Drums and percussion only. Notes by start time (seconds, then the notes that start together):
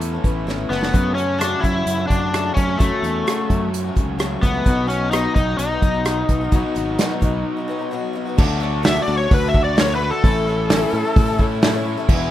0.01 closed hi-hat
0.24 kick, closed hi-hat
0.48 snare
0.71 snare
0.83 snare
0.94 kick, closed hi-hat
1.18 closed hi-hat
1.41 cross-stick, closed hi-hat
1.64 kick, closed hi-hat
1.87 closed hi-hat
2.10 kick, closed hi-hat
2.34 cross-stick, closed hi-hat
2.57 kick, closed hi-hat
2.80 kick, closed hi-hat
3.04 closed hi-hat
3.27 cross-stick, closed hi-hat
3.50 kick, closed hi-hat
3.74 closed hi-hat
3.97 kick, closed hi-hat
4.20 cross-stick, closed hi-hat
4.43 kick, closed hi-hat
4.66 kick, closed hi-hat
4.90 closed hi-hat
5.13 cross-stick, closed hi-hat
5.36 kick, closed hi-hat
5.59 closed hi-hat
5.82 kick, closed hi-hat
6.05 cross-stick, closed hi-hat
6.29 kick, closed hi-hat
6.52 kick, closed hi-hat
6.76 closed hi-hat
6.99 snare, closed hi-hat
7.22 kick, closed hi-hat
8.38 kick, crash
8.84 snare, open hi-hat
9.31 kick, open hi-hat
9.54 kick
9.77 snare, open hi-hat
10.24 kick, open hi-hat
10.70 snare, open hi-hat
11.16 kick, open hi-hat
11.39 kick
11.62 snare, open hi-hat
12.09 kick, crash